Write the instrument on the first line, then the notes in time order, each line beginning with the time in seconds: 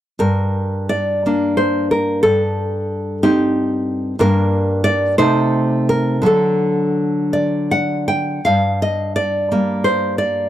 nylon-string guitar
0.19 G2 A#4
0.89 D5
1.26 A#3 D4
1.57 C5
1.91 A#4
2.23 G2 A4
3.23 C4 D#4 G4
4.19 G2 A#3 D4 A#4
4.84 D5
5.18 C3 A3 D#4 C5
5.89 A#4
6.22 D3 F#3 D4
6.26 A4
7.33 D5
7.71 F#5
8.08 G5
8.45 G2 F5
8.82 D#5
9.16 D5
9.52 G3 A#3
9.84 C5
10.18 D5